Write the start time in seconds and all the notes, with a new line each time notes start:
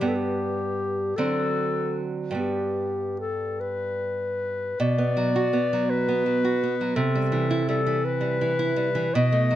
0.00 G2 G3 B3 G4
0.08 A4
0.15 G4
1.16 D3 F#3 C4 A4
2.31 G2 G3
2.35 B3
2.39 G4
3.20 A4
3.61 B4
4.80 B2 D5
4.98 B3
5.17 F#3
5.36 F#4
5.53 B3
5.73 F#3
5.90 B4
6.09 B3
6.26 F#3
6.45 F#4
6.63 B3
6.81 F#3
6.96 C3 A4
7.15 G3
7.32 E3
7.51 E4
7.69 G3 A4
7.86 E3
8.05 B4
8.21 G3
8.41 E3
8.59 E4
8.76 G3
8.95 E3
9.14 B2 D#5
9.32 A3
9.51 F#3